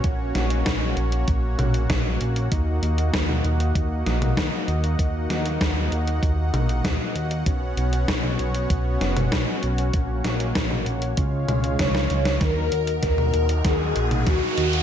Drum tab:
HH |x-xxx-xxx-xxx-xx|x-xxx-xxx-xxx-xx|x-xxx-xxx-xxx-xx|x-xxx-xxx-xxx-xx|
SD |--o-o-------o---|----o-----o-o---|--o-o-------o---|----o-----o-o---|
T2 |----------o-o---|-----o-----o----|----------o-o---|-----o-----o----|
BD |o---o---o---o---|o---o---o---o---|o---o---o---o---|o---o---o---o---|

HH |x-xxx-xxx-xxx-xx|x-xxx-xxx-xxx-xx|
SD |--o-o-------oo-o|o---o---o---o---|
T2 |-----o----o-o---|-----o-----o----|
BD |o---o---o---o---|o---o---o---o---|